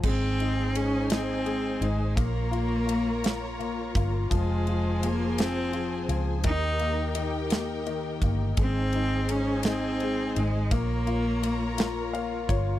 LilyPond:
<<
  \new Staff \with { instrumentName = "String section" } { \time 6/8 \key aes \major \tempo 4. = 56 << { <aes' c'' aes''>2. | <bes' des'' bes''>2. | <aes' c'' aes''>2. | <g' bes' g''>2. |
<aes' c'' aes''>2. | <bes' des'' bes''>2. | } \\ { ees'2. | f'2.~ | f'2. | ees'2. |
ees'2. | f'2. | } >> }
  \new Staff \with { instrumentName = "Cello" } { \time 6/8 \key aes \major c'4 des'8 c'4 aes8 | bes2 r4 | aes4 bes8 c'4 r8 | ees'4 r2 |
c'4 des'8 c'4 aes8 | bes2 r4 | }
  \new Staff \with { instrumentName = "Upright piano" } { \time 6/8 \key aes \major aes8 ees'8 aes8 ees'8 aes8 ees'8 | bes8 f'8 bes8 f'8 bes8 f'8 | f8 f8 f8 f8 f8 f8 | ees8 bes8 ees8 bes8 ees8 bes8 |
aes8 ees'8 aes8 ees'8 aes8 ees'8 | bes8 f'8 bes8 f'8 <bes f''>8 <f' des''>8 | }
  \new Staff \with { instrumentName = "Fingered electric bass" } { \clef bass \time 6/8 \key aes \major aes,,2~ aes,,8 aes,,8 | bes,,2~ bes,,8 g,,8 | f,,2~ f,,8 des,8 | ees,2~ ees,8 g,,8 |
aes,,2~ aes,,8 aes,,8 | bes,,2~ bes,,8 g,,8 | }
  \new DrumStaff \with { instrumentName = "Drums" } \drummode { \time 6/8 <cymc bd>8 cymr8 cymr8 <cymr sn>8 cymr8 cymr8 | <bd cymr>8 cymr8 cymr8 <cymr sn>8 cymr8 <bd cymr>8 | <bd cymr>8 cymr8 cymr8 <cymr sn>8 cymr8 cymr8 | <bd cymr>8 cymr8 cymr8 <cymr sn>8 cymr8 <bd cymr>8 |
<bd cymr>8 cymr8 cymr8 <cymr sn>8 cymr8 cymr8 | <bd cymr>8 cymr8 cymr8 <cymr sn>8 cymr8 <bd cymr>8 | }
>>